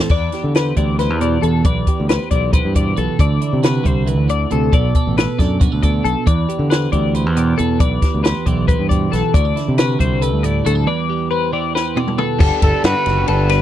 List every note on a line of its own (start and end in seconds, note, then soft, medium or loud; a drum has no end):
0.00 0.11 A4 medium
0.09 0.28 E2 medium
0.09 0.56 B4 medium
0.09 0.55 D5 medium
0.09 kick medium
0.09 crash medium
0.32 0.77 G4 medium
0.32 snare soft
0.32 closed hi-hat medium
0.44 0.71 D3 medium
0.55 0.77 B4 medium
0.55 0.99 C5 soft
0.55 snare medium
0.55 closed hi-hat medium
0.77 1.10 D2 medium
0.77 2.31 E3 medium
0.77 1.22 G4 soft
0.77 0.99 D5 medium
0.77 kick medium
0.77 closed hi-hat medium
0.99 1.21 B4 medium
0.99 1.44 C5 medium
0.99 snare soft
0.99 closed hi-hat medium
1.10 1.37 E2 medium
1.21 1.65 B2 medium
1.21 1.88 G4 medium
1.21 1.43 D5 medium
1.21 closed hi-hat medium
1.42 1.61 E2 medium
1.42 1.65 A4 medium
1.42 1.63 B4 medium
1.42 closed hi-hat medium
1.64 1.83 B1 medium
1.64 3.19 E2 medium
1.64 2.10 B4 medium
1.64 2.09 D5 medium
1.64 kick loud
1.64 closed hi-hat medium
1.87 2.32 G4 medium
1.87 kick medium
1.87 closed hi-hat medium
2.00 2.17 D2 medium
2.09 2.30 B4 medium
2.09 2.53 C5 soft
2.09 snare medium
2.09 closed hi-hat medium
2.31 2.58 B1 medium
2.31 3.83 E3 medium
2.31 2.74 G4 medium
2.31 2.53 D5 medium
2.31 kick medium
2.31 closed hi-hat medium
2.53 2.75 B4 medium
2.53 2.96 C5 medium
2.53 kick medium
2.53 closed hi-hat medium
2.65 2.92 G2 medium
2.75 3.19 B2 medium
2.75 3.17 G4 soft
2.75 2.98 D5 medium
2.75 kick medium
2.75 closed hi-hat medium
2.97 3.07 B1 medium
2.97 3.20 A4 medium
2.97 3.16 B4 medium
2.97 closed hi-hat medium
3.19 3.38 D2 medium
3.19 4.28 D3 medium
3.19 3.63 A4 medium
3.19 3.64 D5 medium
3.19 kick loud
3.19 closed hi-hat medium
3.41 3.83 E4 medium
3.41 closed hi-hat medium
3.53 3.80 C3 medium
3.63 4.73 F#4 medium
3.63 3.86 B4 medium
3.63 snare loud
3.63 closed hi-hat medium
3.84 4.17 C2 medium
3.84 4.06 G3 medium
3.84 4.70 E4 medium
3.84 4.08 C5 medium
3.84 kick medium
3.84 closed hi-hat medium
4.06 4.29 E3 medium
4.06 4.30 B4 medium
4.06 closed hi-hat medium
4.17 4.45 D2 medium
4.29 4.50 D3 medium
4.29 4.52 D5 medium
4.29 closed hi-hat medium
4.51 4.70 D2 medium
4.51 4.72 C3 medium
4.51 4.74 A4 medium
4.51 closed hi-hat medium
4.72 4.91 B1 medium
4.72 5.81 B2 medium
4.72 4.95 A4 medium
4.72 5.17 D5 medium
4.72 kick loud
4.72 closed hi-hat medium
4.95 5.18 A4 medium
4.95 kick medium
4.95 closed hi-hat medium
5.07 5.25 A1 medium
5.17 5.39 A4 medium
5.17 5.39 B4 medium
5.17 snare loud
5.17 closed hi-hat medium
5.38 5.66 F#2 medium
5.38 6.29 D4 medium
5.38 5.59 A4 medium
5.38 5.62 D5 medium
5.38 kick medium
5.38 snare soft
5.38 closed hi-hat medium
5.60 5.72 F#4 medium
5.60 5.83 B4 medium
5.60 kick medium
5.60 closed hi-hat medium
5.72 6.00 D2 medium
5.72 5.82 A4 soft
5.82 6.27 B2 medium
5.82 6.05 A4 medium
5.82 6.05 D5 medium
5.82 kick medium
5.82 closed hi-hat medium
6.04 6.14 B1 medium
6.04 6.27 A4 medium
6.04 6.26 A4 soft
6.04 closed hi-hat medium
6.26 7.79 E2 medium
6.26 6.45 E2 medium
6.26 6.70 B4 medium
6.26 6.70 D5 medium
6.26 kick medium
6.26 closed hi-hat medium
6.49 6.93 G4 medium
6.49 closed hi-hat medium
6.59 6.86 D3 medium
6.70 6.92 B4 medium
6.70 7.15 C5 soft
6.70 snare loud
6.70 closed hi-hat medium
6.92 7.26 D2 medium
6.92 8.46 E3 medium
6.92 7.36 G4 medium
6.92 7.14 D5 medium
6.92 kick medium
6.92 closed hi-hat medium
7.14 7.37 B4 medium
7.14 7.59 C5 medium
7.14 closed hi-hat medium
7.26 7.53 E2 medium
7.36 7.81 B2 medium
7.36 8.02 G4 medium
7.36 7.59 D5 medium
7.36 closed hi-hat medium
7.58 7.77 E2 medium
7.58 7.80 A4 medium
7.58 7.78 B4 medium
7.58 closed hi-hat medium
7.80 7.98 B1 medium
7.80 9.34 E2 medium
7.80 8.24 B4 medium
7.80 8.23 D5 medium
7.80 kick loud
7.80 closed hi-hat medium
8.02 8.47 G4 medium
8.02 kick medium
8.02 snare soft
8.02 closed hi-hat medium
8.15 8.32 D2 medium
8.24 8.46 B4 medium
8.24 8.67 C5 medium
8.24 snare loud
8.24 closed hi-hat medium
8.46 8.73 B1 medium
8.46 9.99 E3 medium
8.46 8.91 G4 medium
8.46 8.68 D5 medium
8.46 kick medium
8.46 closed hi-hat medium
8.68 8.89 B4 medium
8.68 9.12 C5 medium
8.68 kick loud
8.68 closed hi-hat medium
8.79 9.06 G2 medium
8.89 9.34 B2 medium
8.89 9.37 G4 medium
8.89 9.12 D5 medium
8.89 kick medium
8.89 closed hi-hat medium
9.12 9.22 B1 medium
9.12 9.34 A4 medium
9.12 9.32 B4 medium
9.12 snare soft
9.12 closed hi-hat medium
9.34 9.52 D2 medium
9.34 10.85 D3 medium
9.34 9.45 F#4 medium
9.34 9.78 D5 loud
9.34 kick loud
9.34 closed hi-hat medium
9.45 9.78 A4 medium
9.56 10.00 E4 medium
9.56 snare soft
9.56 closed hi-hat medium
9.68 9.95 C3 medium
9.78 10.21 F#4 medium
9.78 10.00 B4 medium
9.78 snare loud
9.78 closed hi-hat medium
9.99 10.34 C2 medium
9.99 11.52 G3 medium
9.99 10.43 E4 medium
9.99 10.22 C5 medium
9.99 kick medium
9.99 closed hi-hat medium
10.22 10.64 A4 medium
10.22 10.43 B4 medium
10.22 closed hi-hat medium
10.34 10.60 D2 medium
10.43 10.85 A2 medium
10.43 10.85 E4 medium
10.43 10.65 D5 medium
10.43 closed hi-hat medium
10.65 10.84 D2 medium
10.65 10.75 F#4 medium
10.65 10.88 A4 medium
10.65 closed hi-hat medium
10.75 10.87 A4 soft
10.86 12.40 E2 medium
10.86 11.31 B4 medium
10.86 11.30 D5 loud
11.10 11.52 G4 medium
11.31 11.53 B4 medium
11.31 11.74 C5 medium
11.53 12.40 E3 medium
11.53 11.95 G4 medium
11.53 11.75 D5 medium
11.75 11.97 B4 medium
11.75 12.18 C5 medium
11.75 snare medium
11.96 12.40 B2 medium
11.96 12.38 G4 medium
11.96 12.19 D5 medium
11.96 high tom medium
12.08 mid tom medium
12.18 12.39 A4 medium
12.18 12.38 B4 medium
12.18 mid tom medium
12.39 12.49 G1 loud
12.39 13.62 G2 medium
12.39 13.62 D3 loud
12.39 13.62 G3 loud
12.39 13.62 B3 loud
12.39 13.62 D4 loud
12.39 12.62 A4 loud
12.39 kick loud
12.39 crash loud
12.62 12.71 G1 loud
12.62 12.83 A4 loud
12.62 12.84 A4 medium
12.62 kick medium
12.62 ride medium
12.84 12.93 G2 loud
12.84 13.28 F#4 medium
12.84 13.25 B4 loud
12.84 snare loud
12.84 ride loud
13.06 13.24 F#1 medium
13.06 snare soft
13.06 ride medium
13.28 13.62 G1 loud
13.28 13.50 A4 medium
13.28 13.62 B4 medium
13.28 ride loud
13.49 13.62 B4 medium
13.49 snare soft
13.49 ride medium